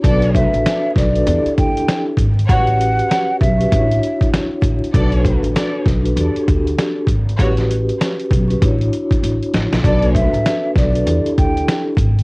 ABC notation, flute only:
X:1
M:4/4
L:1/16
Q:"Swing 16ths" 1/4=98
K:Bm
V:1 name="Flute"
d2 e4 d4 g3 z3 | f6 e6 z4 | z16 | z16 |
d2 e4 d4 g3 z3 |]